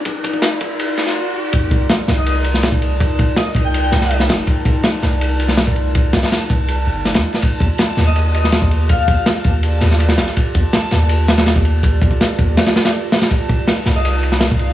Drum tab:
RD |x-x-x-x-x-x-----|x-x-x-x-x-x-x-x-|x-x-x-x-x-x-x-x-|x-x-x-x-x-x-x-x-|
SD |----o-----oo----|----o-o----oo---|----o-----oo-ooo|----o-o----oo---|
BD |o-oo--o---------|o-o----------o--|o-o---o---------|o-o----------o--|

RD |x-xxx-x-x---xx-x|x-x-x-x-x-x-x-x-|x-x-x-x-x-x-x-x-|x-x-x-x-x-xxx-x-|
SD |--ooo-------oo-o|----o-o----oo---|----o-----oo-ooo|----o-o---ooo---|
BD |o-----o---------|o-o----------o--|o-o---o---------|o-o----------o--|

RD |x-x-x-x-xxxx--xx|x-x-x-x-x-x-x-x-|
SD |----o---oooo--oo|----o-o----oo---|
BD |o-oo--o---------|o-o----------o--|